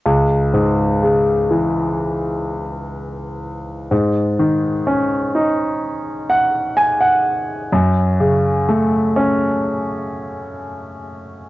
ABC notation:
X:1
M:4/4
L:1/16
Q:1/4=63
K:C#m
V:1 name="Grand piano"
z16 | z8 z2 f2 g f3 | z16 |]
V:2 name="Grand piano" clef=bass
C,,2 G,,2 C,2 E,8 z2 | G,,2 D,2 C2 D8 z2 | F,,2 C,2 A,2 C8 z2 |]